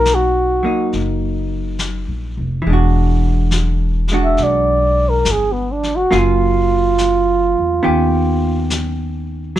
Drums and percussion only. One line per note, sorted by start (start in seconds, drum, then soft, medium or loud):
0.05 snare soft
0.05 hi-hat pedal soft
0.93 brush sweep soft
0.93 snare soft
1.79 snare soft
1.79 hi-hat pedal soft
2.64 brush sweep soft
3.51 snare soft
3.51 hi-hat pedal soft
4.08 snare soft
4.37 brush sweep soft
4.37 snare soft
5.25 snare soft
5.25 hi-hat pedal soft
5.83 snare soft
6.12 brush sweep soft
6.12 snare soft
6.98 snare soft
6.98 hi-hat pedal soft
7.83 brush sweep soft
8.70 snare soft
8.70 hi-hat pedal soft
9.56 brush sweep soft
9.56 snare soft